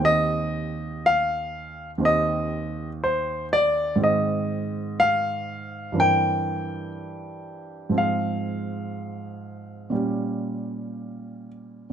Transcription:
<<
  \new Staff \with { instrumentName = "Grand piano" } { \time 4/4 \key c \minor \tempo 4 = 60 ees''4 f''4 ees''4 c''8 d''8 | \key f \minor ees''4 f''4 g''2 | f''2.~ f''8 r8 | }
  \new Staff \with { instrumentName = "Grand piano" } { \time 4/4 \key c \minor <ees, ees c' g'>2 <ees, ees c' g'>2 | \key f \minor <aes, ees c' aes'>2 <g, e c' bes'>2 | <aes, f c' aes'>2 <bes, g des' g'>2 | }
>>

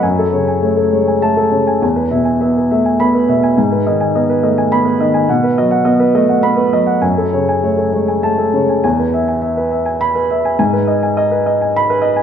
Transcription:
<<
  \new Staff \with { instrumentName = "Upright piano" } { \time 3/4 \key e \major \tempo 4 = 103 << { r2 a''8 r8 | r2 b''8 r8 | r2 b''8 r8 | r2 b''8 r8 |
r2 a''8 r8 | r2 b''8 r8 | r2 b''8 r8 | } \\ { gis''16 a'16 cis''16 gis''16 cis''16 a'16 cis''16 gis''8 a'16 cis''16 gis''16 | gis''16 b'16 e''16 gis''16 e''16 b'16 e''16 gis''8 b'16 e''16 gis''16 | gis''16 b'16 dis''16 gis''16 dis''16 b'16 dis''16 gis''8 b'16 dis''16 gis''16 | fis''16 b'16 dis''16 fis''16 dis''16 b'16 dis''16 fis''8 b'16 dis''16 fis''16 |
gis''16 a'16 cis''16 gis''16 cis''16 a'16 cis''16 gis''8 a'16 cis''16 gis''16 | gis''16 b'16 e''16 gis''16 e''16 b'16 e''16 gis''8 b'16 e''16 gis''16 | gis''16 b'16 dis''16 gis''16 dis''16 b'16 dis''16 gis''8 b'16 dis''16 gis''16 | } >> }
  \new Staff \with { instrumentName = "Upright piano" } { \clef bass \time 3/4 \key e \major fis,8 cis8 a8 gis8 a8 cis8 | e,8 b,8 b8 a8 b8 b,8 | gis,8 dis8 b8 a8 b8 dis8 | b,8 fis8 b8 a8 b8 fis8 |
fis,8 cis8 a8 gis8 a8 cis8 | e,2. | gis,2. | }
>>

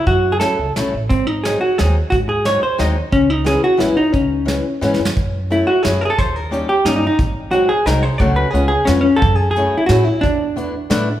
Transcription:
<<
  \new Staff \with { instrumentName = "Hollow-body jazz guitar" } { \time 3/4 \key cis \minor \tempo 4 = 178 fis'8. gis'16 a'4 r4 | bis8 dis'8 gis'8 fis'8 gis'8 r8 | fis'8 gis'8 cis''8 bis'8 dis''8 r8 | cis'8 dis'8 gis'8 fis'8 e'8 dis'8 |
cis'2~ cis'8 r8 | \key fis \minor r4 e'8 fis'8 gis'8 a'32 gis'32 a'16 | bis'8 ais'8 g'8 g'8 \tuplet 3/2 { dis'8 dis'8 dis'8 } | r4 fis'8 gis'8 ais'8 bis'8 |
cis''8 b'8 gis'8 gis'8 cis'8 cis'8 | a'8 gis'8 gis'8. e'16 fis'8 e'8 | d'2~ d'8 r8 | }
  \new Staff \with { instrumentName = "Steel-string acoustic guitar" } { \time 3/4 \key cis \minor r4 <fis a cis' e'>8 r8 <fis a cis' e'>8 r8 | r4 <fis gis bis dis'>8 r8 <fis gis bis dis'>8 r8 | r4 <fis gis bis dis'>8 r8 <fis gis bis dis'>8 r8 | r4 <e gis b cis'>8 r8 <e gis b cis'>8 r8 |
r4 <e gis b cis'>8 r8 <e gis b cis'>8 r8 | \key fis \minor r4 <fis a cis' e'>8 r8 <fis a cis' e'>8 r8 | r4 <g ais cis' dis'>8 r8 <g ais cis' dis'>8 r8 | r4 <fis gis bis dis'>8 r8 <fis gis bis dis'>8 r8 |
<fis a cis' fis'>4 <gis b cis' eis'>8 r8 <gis b cis' eis'>8 r8 | r4 <fis a cis' e'>8 r8 <fis a cis' e'>8 r8 | r4 <a b d' e'>8 r8 <a b d' e'>8 r8 | }
  \new Staff \with { instrumentName = "Upright bass" } { \clef bass \time 3/4 \key cis \minor fis,4. cis,8 b,,8 a,,8 | gis,2 dis,4 | gis,2 dis,4 | cis,2 gis,,4 |
cis,2 gis,8 fis,8 | \key fis \minor fis,2 fis,4 | dis,2 g,4 | gis,,2 bis,,4 |
cis,4 cis,4 eis,4 | fis,2 a,4 | e,2 a,4 | }
  \new DrumStaff \with { instrumentName = "Drums" } \drummode { \time 3/4 <hh bd>4 <hh sn>4 <hh sn>4 | <hh bd>4 <hh sn>4 <hh sn>4 | <hh bd>4 <hh sn>4 <hh sn>4 | <hh bd>4 <hh sn>4 <hh sn>4 |
<hh bd>4 <hh sn>4 \tuplet 3/2 { sn8 sn8 sn8 } | <hh bd>4 hh4 <hh sn>4 | <hh bd>4 hh4 <hh sn>4 | <hh bd>4 hh4 <hh sn>4 |
<hh bd>4 hh4 <hh sn>4 | <hh bd>4 hh4 <hh sn>4 | <hh bd>4 hh4 <hh sn>4 | }
>>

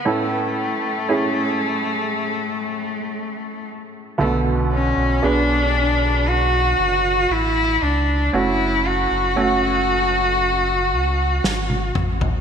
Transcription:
<<
  \new Staff \with { instrumentName = "Cello" } { \time 4/4 \key a \major \tempo 4 = 58 a2.~ a8 r8 | a8 cis'8 d'4 fis'4 e'8 d'8 | e'8 fis'2. r8 | }
  \new Staff \with { instrumentName = "Upright piano" } { \time 4/4 \key a \major <cis' e' a'>4 <cis' e' gis'>2 r4 | <d b a'>4 <b d' gis'>2 r4 | <a cis' fis'>4 <a cis' fis'>2 r4 | }
  \new Staff \with { instrumentName = "Upright piano" } { \clef bass \time 4/4 \key a \major a,4. r2 r8 | b,4. r2 r8 | r1 | }
  \new Staff \with { instrumentName = "Sub bass" } { \clef bass \time 4/4 \key a \major r1 | b,,8. b,,16 b,,4. fis,,8 a,,8 cis,8 | fis,,8. fis,,16 fis,,4. cis,8 gis,,8 a,,8 | }
  \new DrumStaff \with { instrumentName = "Drums" } \drummode { \time 4/4 r4 r4 r4 r4 | r4 r4 r4 r4 | r4 r4 r4 sn16 tommh16 toml16 tomfh16 | }
>>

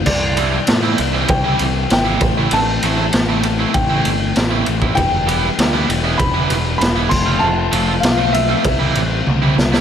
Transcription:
<<
  \new Staff \with { instrumentName = "Upright piano" } { \time 4/4 \key c \major \tempo 4 = 98 d''2 g''4 g''4 | a''2 g''4. r8 | g''4. r8 b''4 b''8 c'''8 | a''4 f''8 e''4 r4. | }
  \new Staff \with { instrumentName = "Overdriven electric guitar" } { \time 4/4 \key c \major <c e g c' e'>8 <e g c' e'>16 <g c' e'>16 <c e g c' e'>8 <e g c' e'>16 <g c' e'>8 <g c' e'>16 <e g c' e'>8 <c e g c' e'>8 <a, e a c' e'>16 <a c' e'>16 | <a, e a c' e'>8 <e a c' e'>16 <a c' e'>16 <a, e a c' e'>8 <e a c' e'>16 <a c' e'>8 <a c' e'>16 <e a c' e'>8 <a, e a c' e'>8 <e a c' e'>16 <a c' e'>16 | <e g b e'>8 <e g b e'>16 <g b e'>16 <e g b e'>8 <e g b e'>16 <g b e'>8 <g b e'>16 <e g b e'>8 <e g b e'>8 <f a c' f'>16 <a c' f'>16 | <f a c' f'>8 <f a c' f'>16 <a c' f'>16 <f a c' f'>8 <f a c' f'>16 <a c' f'>16 <c e g c' e'>16 <g c' e'>16 <e g c' e'>8 <c e g c' e'>8 <e g c' e'>16 <g c' e'>16 | }
  \new Staff \with { instrumentName = "Overdriven electric guitar" } { \time 4/4 \key c \major r8 <e g c' e'>16 r8 <e g c' e'>16 r16 <e g c' e'>16 r16 <e g c' e'>16 r8. <e g c' e'>16 r16 <e a c' e'>16 | r8 <e a c' e'>16 r8 <e a c' e'>16 r16 <e a c' e'>16 r16 <e a c' e'>16 r8. <e a c' e'>16 r16 <e a c' e'>16 | r8 <e g b e'>16 r8 <e g b e'>16 r16 <e g b e'>16 r16 <e g b e'>16 r8. <e g b e'>16 r16 <f a c' f'>16 | r8 <f a c' f'>16 r8 <f a c' f'>16 r16 <f a c' f'>16 r16 <e g c' e'>16 r8. <e g c' e'>16 r16 <e g c' e'>16 | }
  \new Staff \with { instrumentName = "Picked electric bass" } { \clef bass \time 4/4 \key c \major c,4 a,8 c,8 c,8 c,8 aes,,8 a,,8 | a,,8 a,,8 a,,4 a,,8 g,,8 a,,8 a,,8 | e,,4 d,8 e,,8 e,,8 e,,8 e,,8 f,,8 | f,,8 f,,8 b,,4 c,8 a,,8 c,8 c,8 | }
  \new DrumStaff \with { instrumentName = "Drums" } \drummode { \time 4/4 <cymc bd>8 cymr8 <cymr sn>8 cymr8 <bd cymr>8 cymr8 <cymr sn>8 <bd cymr>8 | cymr8 cymr8 <cymr sn>8 cymr8 <bd cymr>8 cymr8 <cymr sn>8 cymr16 bd16 | <bd cymr>8 cymr8 <cymr sn>8 cymr8 <bd cymr>8 cymr8 <cymr sn>8 <cymc bd>8 | r8 cymr8 <cymr sn>8 cymr8 <bd cymr>8 cymr8 tommh8 sn16 sn16 | }
>>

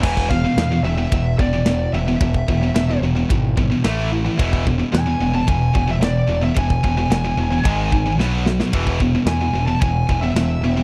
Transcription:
<<
  \new Staff \with { instrumentName = "Lead electric guitar" } { \time 4/4 \key e \major \tempo 4 = 110 gis''8 f''4 e''4 d''4 e''8~ | e''4. r2 r8 | r4 gis''8. a''16 gis''8. e''16 d''8. e''16 | gis''2. r4 |
r4 gis''8. a''16 gis''8. e''4~ e''16 | }
  \new Staff \with { instrumentName = "Distorted electric guitar" } { \clef bass \time 4/4 \key e \major <e, b, e>8 <e, b,>16 <e, b,>16 <e, b,>16 <e, b,>16 <e, b,>16 <e, b,>16 <e, b,>8 <e, b,>16 <e, b,>16 <e, b,>8 <e, b,>16 <e, b,>16 | <e, b,>8 <e, b,>16 <e, b,>16 <e, b,>16 <e, b,>16 <e, b,>16 <e, b,>16 <e, b,>8 <e, b,>16 <e, b,>16 <a, e a>8 <a, e>16 <a, e>16 | <e, b, e>8 <e, b,>16 <e, b,>16 <e, b,>16 <e, b,>16 <e, b,>16 <e, b,>16 <e, b,>8 <e, b,>16 <e, b,>16 <e, b,>8 <e, b,>16 <e, b,>16 | <e, b,>8 <e, b,>16 <e, b,>16 <e, b,>16 <e, b,>16 <e, b,>16 <e, b,>16 <gis, dis gis>8 <gis, dis>16 <gis, dis>16 <b, fis b>8 <b, fis>16 <b, fis>16 |
<e, b, e>8 <e, b,>16 <e, b,>16 <e, b,>16 <e, b,>16 <e, b,>16 <e, b,>16 <e, b,>8 <e, b,>16 <e, b,>16 <e, b,>8 <e, b,>16 <e, b,>16 | }
  \new Staff \with { instrumentName = "Distorted electric guitar" } { \clef bass \time 4/4 \key e \major <e, b, e>8 <e, b,>16 <e, b,>16 <e, b,>16 <e, b,>16 <e, b,>16 <e, b,>16 <e, b,>8 <e, b,>16 <e, b,>16 <e, b,>8 <e, b,>16 <e, b,>16 | <e, b,>8 <e, b,>16 <e, b,>16 <e, b,>16 <e, b,>16 <e, b,>16 <e, b,>16 <e, b,>8 <e, b,>16 <e, b,>16 <a, e a>8 <a, e>16 <a, e>16 | <e, b, e>8 <e, b,>16 <e, b,>16 <e, b,>16 <e, b,>16 <e, b,>16 <e, b,>16 <e, b,>8 <e, b,>16 <e, b,>16 <e, b,>8 <e, b,>16 <e, b,>16 | <e, b,>8 <e, b,>16 <e, b,>16 <e, b,>16 <e, b,>16 <e, b,>16 <e, b,>16 <gis, dis gis>8 <gis, dis>16 <gis, dis>16 <b, fis b>8 <b, fis>16 <b, fis>16 |
<e, b, e>8 <e, b,>16 <e, b,>16 <e, b,>16 <e, b,>16 <e, b,>16 <e, b,>16 <e, b,>8 <e, b,>16 <e, b,>16 <e, b,>8 <e, b,>16 <e, b,>16 | }
  \new Staff \with { instrumentName = "Picked electric bass" } { \clef bass \time 4/4 \key e \major e,,4 e,8 e,,8 e,,8 e,,8 e,,8 e,,8 | e,,8 e,,8 e,,8 e,,8 gis,,4 a,,4 | e,,4 e,8 e,,8 e,,8 e,,8 e,,8 e,,8 | e,,8 e,,8 e,,8 e,,8 gis,,4 b,,4 |
e,,4 e,8 e,,8 e,,8 e,,8 e,,8 e,,8 | }
  \new DrumStaff \with { instrumentName = "Drums" } \drummode { \time 4/4 <cymc bd>16 bd16 bd8 <rb sn>4 <bd rb>8 bd8 <rb sn>4 | <bd rb>16 bd16 bd8 <rb sn>4 <bd rb>8 bd8 <rb sn>4 | <bd rb>16 bd16 bd8 <rb sn>4 <bd rb>8 bd8 <rb sn>4 | <bd rb>16 bd16 bd8 <rb sn>4 <bd rb>8 bd8 sn8 sn16 sn16 |
<bd rb>16 bd16 bd8 <rb sn>4 <bd rb>8 bd8 <rb sn>4 | }
>>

